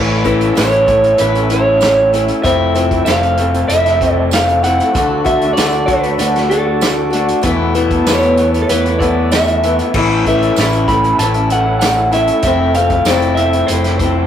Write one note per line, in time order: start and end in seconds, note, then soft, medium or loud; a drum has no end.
0.00 0.49 A1 medium
0.00 0.55 A2 medium
0.00 0.57 E3 medium
0.00 0.44 A3 medium
0.00 0.42 C#4 medium
0.00 2.42 C#4 medium
0.00 0.40 E4 medium
0.00 2.42 E4 medium
0.00 2.42 A4 medium
0.24 0.54 A2 medium
0.24 0.54 E3 medium
0.24 0.55 A3 medium
0.24 0.56 C#4 medium
0.24 0.56 E4 medium
0.24 kick medium
0.24 closed hi-hat medium
0.40 0.58 C#4 medium
0.40 0.59 E4 medium
0.40 closed hi-hat soft
0.44 0.57 A3 medium
0.56 1.12 A1 medium
0.56 1.19 A2 medium
0.56 0.86 E3 medium
0.56 0.88 A3 loud
0.56 0.88 C#4 medium
0.56 0.90 E4 loud
0.56 1.22 C#5 loud
0.56 snare loud
0.56 closed hi-hat medium
0.56 tambourine loud
0.72 closed hi-hat soft
0.86 1.16 E3 medium
0.86 1.06 A3 medium
0.86 1.03 C#4 medium
0.86 1.18 E4 soft
0.86 kick medium
0.86 closed hi-hat medium
0.91 1.02 E4 medium
1.03 1.19 A3 medium
1.03 1.19 C#4 medium
1.03 1.20 E4 medium
1.03 closed hi-hat soft
1.18 2.29 A1 medium
1.18 1.47 E3 medium
1.18 1.34 A3 medium
1.18 1.33 C#4 medium
1.18 1.31 E4 medium
1.18 1.52 B4 medium
1.18 closed hi-hat loud
1.32 1.50 A3 medium
1.32 1.50 C#4 medium
1.32 1.51 E4 medium
1.32 closed hi-hat soft
1.49 1.79 E3 medium
1.49 1.67 A3 medium
1.49 1.65 C#4 medium
1.49 1.63 E4 medium
1.49 closed hi-hat medium
1.53 2.10 C#5 medium
1.65 1.82 A3 medium
1.65 1.81 C#4 medium
1.65 1.81 E4 medium
1.80 2.41 A2 loud
1.80 2.10 E3 medium
1.80 2.12 A3 medium
1.80 2.12 C#4 loud
1.80 2.13 E4 loud
1.80 snare loud
1.80 closed hi-hat loud
1.80 tambourine medium
2.11 2.41 E3 medium
2.11 2.29 A3 medium
2.11 2.27 C#4 medium
2.11 2.25 E4 medium
2.11 closed hi-hat medium
2.26 2.44 A3 medium
2.26 2.42 C#4 medium
2.26 2.41 E4 medium
2.26 closed hi-hat soft
2.43 2.99 F1 medium
2.43 3.06 F3 medium
2.43 2.95 A3 medium
2.43 4.91 C4 medium
2.43 2.92 C4 medium
2.43 2.91 E4 medium
2.43 4.91 A4 medium
2.43 3.05 E5 medium
2.43 kick loud
2.43 closed hi-hat loud
2.75 3.05 F3 medium
2.75 3.06 A3 medium
2.75 3.06 C4 medium
2.75 3.06 E4 medium
2.75 closed hi-hat medium
2.91 3.08 A3 medium
2.91 3.08 C4 medium
2.91 3.08 E4 medium
2.91 kick medium
2.91 closed hi-hat soft
3.05 3.61 F1 medium
3.05 3.36 F3 loud
3.05 3.38 A3 loud
3.05 3.40 E4 loud
3.05 3.64 F5 medium
3.05 snare loud
3.05 closed hi-hat loud
3.05 tambourine medium
3.10 3.38 C4 loud
3.23 closed hi-hat soft
3.37 3.68 F3 medium
3.37 3.56 A3 medium
3.37 3.54 C4 medium
3.37 3.52 E4 medium
3.37 closed hi-hat medium
3.53 3.70 A3 medium
3.53 3.70 C4 medium
3.53 3.71 E4 medium
3.53 closed hi-hat soft
3.68 4.79 F1 medium
3.68 3.99 F3 medium
3.68 3.87 A3 medium
3.68 3.86 C4 medium
3.68 3.84 E4 medium
3.68 4.13 E5 loud
3.68 closed hi-hat loud
3.85 4.01 A3 medium
3.85 4.02 C4 medium
3.85 4.02 E4 medium
3.85 snare soft
3.85 closed hi-hat soft
4.00 4.31 F3 medium
4.00 4.20 A3 medium
4.00 4.17 C4 medium
4.00 4.16 E4 medium
4.00 kick medium
4.00 closed hi-hat medium
4.13 4.27 D5 loud
4.17 4.33 A3 medium
4.17 4.33 C4 medium
4.17 4.34 E4 medium
4.31 4.62 F3 medium
4.31 4.64 A3 loud
4.31 4.64 C4 loud
4.31 4.65 E4 loud
4.31 4.63 F5 loud
4.31 snare loud
4.31 closed hi-hat loud
4.31 tambourine loud
4.48 closed hi-hat soft
4.63 4.92 F3 medium
4.63 4.81 A3 medium
4.63 4.79 C4 medium
4.63 4.77 E4 medium
4.63 5.25 F#5 loud
4.63 closed hi-hat medium
4.78 4.96 A3 medium
4.78 4.93 C4 medium
4.78 4.92 E4 medium
4.78 closed hi-hat soft
4.92 5.50 D2 medium
4.92 5.56 D3 medium
4.92 7.41 D4 medium
4.92 7.40 F#4 medium
4.92 7.40 A4 medium
4.92 kick loud
4.92 closed hi-hat medium
4.97 5.46 A3 medium
4.97 5.43 D4 medium
4.97 5.41 F#4 medium
5.25 5.56 D3 medium
5.25 5.56 A3 medium
5.25 5.56 D4 medium
5.25 5.56 F#4 medium
5.25 5.53 E5 medium
5.25 kick medium
5.25 closed hi-hat medium
5.41 5.59 D4 medium
5.41 5.59 F#4 medium
5.41 closed hi-hat soft
5.46 5.58 A3 medium
5.53 5.84 D5 medium
5.53 closed hi-hat medium
5.58 6.12 D2 loud
5.58 5.88 D3 loud
5.58 5.91 A3 loud
5.58 5.91 D4 loud
5.58 5.91 F#4 medium
5.58 snare loud
5.58 tambourine loud
5.72 closed hi-hat soft
5.86 6.18 D3 medium
5.86 6.18 F#4 medium
5.86 6.49 B4 medium
5.86 kick medium
5.86 closed hi-hat medium
5.91 6.08 A3 medium
5.91 6.06 D4 medium
5.91 6.05 F#4 medium
6.03 6.20 F#4 medium
6.03 closed hi-hat soft
6.07 6.19 A3 medium
6.07 6.20 D4 medium
6.19 7.29 D2 medium
6.19 6.49 D3 medium
6.19 6.38 A3 medium
6.19 6.36 D4 medium
6.19 6.35 F#4 medium
6.19 closed hi-hat loud
6.36 6.51 A3 medium
6.36 6.51 D4 medium
6.36 6.52 F#4 medium
6.36 snare soft
6.36 closed hi-hat soft
6.49 6.80 D3 medium
6.49 6.68 A3 medium
6.49 6.66 D4 medium
6.49 7.09 F#4 medium
6.49 7.08 A4 medium
6.49 closed hi-hat medium
6.53 6.64 F#4 medium
6.65 6.83 A3 medium
6.65 6.82 D4 medium
6.65 6.83 F#4 medium
6.81 7.12 D3 medium
6.81 7.13 A3 loud
6.81 7.14 D4 medium
6.81 7.15 F#4 medium
6.81 snare loud
6.81 closed hi-hat loud
6.81 tambourine loud
7.10 7.42 D3 medium
7.10 7.30 A3 medium
7.10 7.43 F#4 medium
7.10 closed hi-hat medium
7.15 7.28 D4 medium
7.15 7.26 F#4 medium
7.27 7.45 A3 medium
7.27 7.42 D4 medium
7.27 7.41 F#4 medium
7.27 closed hi-hat soft
7.43 7.99 E2 medium
7.43 8.05 E2 medium
7.43 8.06 B2 medium
7.43 7.93 E3 medium
7.43 7.92 A3 medium
7.43 9.92 B3 medium
7.43 7.91 B3 medium
7.43 9.91 E4 medium
7.43 7.90 E4 medium
7.43 9.91 A4 medium
7.43 kick loud
7.43 closed hi-hat loud
7.75 8.05 E2 medium
7.75 8.06 B2 medium
7.75 8.06 E3 medium
7.75 8.07 A3 medium
7.75 8.06 B3 medium
7.75 8.06 E4 medium
7.75 closed hi-hat medium
7.91 8.07 E3 medium
7.91 8.08 A3 medium
7.91 8.08 B3 medium
7.91 8.08 E4 medium
7.91 kick medium
7.91 closed hi-hat soft
8.06 8.69 E2 medium
8.06 8.62 E2 medium
8.06 8.69 B2 medium
8.06 8.35 E3 loud
8.06 8.37 A3 loud
8.06 8.37 B3 loud
8.06 8.38 E4 loud
8.06 8.64 C#5 medium
8.06 snare loud
8.06 closed hi-hat medium
8.06 tambourine loud
8.22 closed hi-hat soft
8.35 8.55 E3 medium
8.35 8.54 A3 medium
8.35 8.52 B3 medium
8.35 8.52 E4 medium
8.35 closed hi-hat medium
8.40 8.67 E3 soft
8.53 8.67 E3 medium
8.53 8.68 A3 medium
8.53 8.68 B3 medium
8.53 8.70 E4 medium
8.53 closed hi-hat soft
8.62 8.69 A4 medium
8.67 9.79 E2 medium
8.67 8.86 E3 medium
8.67 8.86 A3 medium
8.67 8.84 B3 medium
8.67 8.83 E4 medium
8.67 9.01 B4 medium
8.67 closed hi-hat loud
8.84 8.98 E3 medium
8.84 9.00 A3 medium
8.84 9.00 B3 medium
8.84 9.02 E4 medium
8.84 closed hi-hat soft
8.99 9.18 E3 medium
8.99 9.17 A3 medium
8.99 9.15 B3 medium
8.99 9.14 E4 medium
8.99 9.31 D5 medium
8.99 kick medium
8.99 closed hi-hat medium
9.03 9.67 E3 soft
9.15 9.32 E3 medium
9.15 9.32 A3 medium
9.15 9.32 B3 medium
9.15 9.34 E4 medium
9.31 9.92 E2 medium
9.31 9.92 B2 medium
9.31 9.61 E3 medium
9.31 9.63 A3 loud
9.31 9.63 B3 medium
9.31 9.64 E4 loud
9.31 9.75 E5 medium
9.31 snare loud
9.31 closed hi-hat loud
9.31 tambourine medium
9.48 closed hi-hat soft
9.62 9.83 E3 medium
9.62 9.81 A3 medium
9.62 9.80 B3 medium
9.62 9.80 E4 medium
9.62 closed hi-hat medium
9.67 9.94 E3 soft
9.79 9.96 A3 medium
9.79 9.93 B3 medium
9.79 9.98 E4 medium
9.79 closed hi-hat soft
9.83 9.95 E3 medium
9.94 10.49 A1 medium
9.94 10.57 A2 medium
9.94 10.58 E3 medium
9.94 10.44 A3 medium
9.94 12.42 C#4 medium
9.94 10.42 C#4 medium
9.94 12.42 E4 medium
9.94 12.42 A4 medium
9.94 kick loud
9.94 crash loud
9.98 10.41 E4 medium
10.26 10.56 A2 medium
10.26 10.57 E3 medium
10.26 10.57 A3 medium
10.26 10.57 C#4 medium
10.26 10.57 E4 medium
10.26 10.88 E5 medium
10.26 kick medium
10.26 closed hi-hat medium
10.42 10.60 A3 medium
10.42 10.59 C#4 medium
10.42 10.60 E4 medium
10.42 closed hi-hat soft
10.56 11.12 A1 medium
10.56 11.20 A2 medium
10.56 10.87 E3 medium
10.56 10.88 A3 loud
10.56 10.88 C#4 loud
10.56 snare loud
10.56 closed hi-hat medium
10.56 tambourine medium
10.61 10.91 E4 loud
10.73 closed hi-hat soft
10.87 11.18 E3 medium
10.87 11.07 A3 medium
10.87 11.05 C#4 medium
10.87 11.04 E4 medium
10.87 11.19 B5 loud
10.87 kick medium
10.87 closed hi-hat medium
11.04 11.20 A3 medium
11.04 11.21 C#4 medium
11.04 11.21 E4 medium
11.04 closed hi-hat soft
11.19 12.29 A1 medium
11.19 11.48 E3 medium
11.19 11.38 A3 medium
11.19 11.36 C#4 medium
11.19 11.34 E4 medium
11.19 11.48 A5 loud
11.19 closed hi-hat loud
11.34 11.51 C#4 medium
11.34 11.52 E4 medium
11.34 closed hi-hat soft
11.38 11.50 A3 medium
11.49 11.80 E3 medium
11.49 11.67 A3 medium
11.49 11.66 C#4 medium
11.49 11.64 E4 medium
11.49 11.78 F#5 medium
11.49 closed hi-hat medium
11.65 11.81 A3 medium
11.65 11.81 C#4 medium
11.65 11.82 E4 medium
11.79 12.42 A2 medium
11.79 12.10 E3 loud
11.79 12.11 A3 loud
11.79 12.12 C#4 loud
11.79 12.13 E4 medium
11.79 12.13 F#5 loud
11.79 snare loud
11.79 closed hi-hat loud
11.79 tambourine loud
12.11 12.41 E3 medium
12.11 12.30 A3 medium
12.11 12.28 C#4 medium
12.11 12.27 E4 medium
12.11 12.42 E5 medium
12.11 closed hi-hat medium
12.27 12.44 A3 medium
12.27 12.43 C#4 medium
12.27 12.42 E4 medium
12.27 closed hi-hat soft
12.42 12.99 F1 loud
12.42 13.06 F3 medium
12.42 12.94 A3 loud
12.42 14.27 C4 medium
12.42 12.92 C4 loud
12.42 14.27 A4 medium
12.42 12.75 E5 medium
12.42 kick loud
12.42 closed hi-hat medium
12.47 12.91 E4 medium
12.74 13.06 A3 medium
12.74 13.07 C4 medium
12.74 13.07 F5 medium
12.74 closed hi-hat medium
12.79 13.05 F3 medium
12.90 13.08 C4 medium
12.90 13.09 E4 medium
12.90 kick medium
12.90 closed hi-hat soft
12.95 13.09 A3 medium
13.05 13.61 F1 medium
13.05 13.36 F3 medium
13.05 13.38 A3 loud
13.05 13.39 D5 medium
13.05 snare loud
13.05 closed hi-hat loud
13.05 tambourine loud
13.10 13.38 C4 medium
13.10 13.39 E4 loud
13.22 closed hi-hat soft
13.35 13.67 F3 medium
13.35 13.55 A3 medium
13.35 13.69 E5 medium
13.35 closed hi-hat medium
13.39 13.53 C4 medium
13.39 13.52 E4 medium
13.53 13.69 A3 medium
13.53 13.70 C4 medium
13.53 13.71 E4 medium
13.53 closed hi-hat soft
13.67 14.27 F1 medium
13.67 13.99 F3 medium
13.67 13.87 A3 medium
13.67 13.98 C5 medium
13.67 closed hi-hat loud
13.71 13.85 C4 medium
13.71 13.83 E4 medium
13.84 14.02 A3 medium
13.84 14.02 C4 medium
13.84 14.02 E4 medium
13.84 snare soft
13.84 closed hi-hat soft
13.99 14.27 F3 medium
13.99 14.19 A3 medium
13.99 14.16 C4 medium
13.99 14.27 C5 medium
13.99 kick medium
13.99 closed hi-hat medium
14.04 14.14 E4 medium
14.16 14.27 A3 medium
14.16 14.27 C4 medium
14.16 14.27 E4 medium